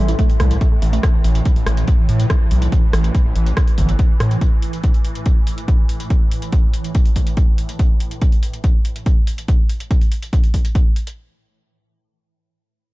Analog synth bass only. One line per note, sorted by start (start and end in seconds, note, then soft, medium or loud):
0.00 0.15 A1 loud
0.40 0.57 C2 medium
0.82 0.99 A1 loud
1.24 1.41 A1 loud
1.56 1.65 A1 medium
1.67 1.84 A1 medium
2.09 2.26 A2 loud
2.51 2.68 B1 loud
2.93 3.10 A1 loud
3.25 3.34 A1 medium
3.36 3.53 A1 loud
3.78 3.95 G1 medium
4.20 4.37 A2 medium